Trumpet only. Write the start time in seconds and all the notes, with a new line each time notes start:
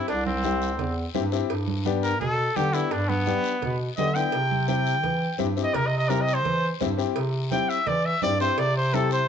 0.09 D4
0.26 C4
2.03 A#4
2.20 A4
2.56 G4
2.73 E4
2.92 D4
3.09 B3
3.96 D#5
4.15 G5
4.68 G5
5.63 D#5
5.75 A#4
5.86 D#5
5.98 D#5
6.09 A#4
6.21 D#5
6.34 C5
7.52 G5
7.69 E5
7.87 D5
8.05 E5
8.23 D5
8.41 C5
8.59 D5
8.77 C5
8.94 A4
9.12 C5